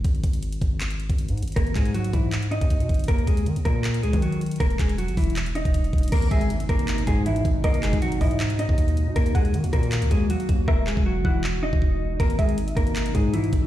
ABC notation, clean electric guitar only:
X:1
M:4/4
L:1/8
Q:1/4=158
K:G#m
V:1 name="Clean electric guitar"
z8 | [A,A] [G,G] [F,F] [E,E] z [Dd]3 | [A,A] [G,G] z [A,A]2 [G,G] [F,F] z | [A,A] [G,G] [F,F] [E,E] z [Dd]3 |
[A,A] [G,G] z [A,A]2 [G,G] [E,E] z | [A,A] [G,G] [F,F] [E,E] z [Dd]3 | [A,A] [G,G] z [A,A]2 [G,G] [F,F] z | [A,A] [G,G] [F,F] [E,E] z [Dd]3 |
[A,A] [G,G] z [A,A]2 [G,G] [E,E] z |]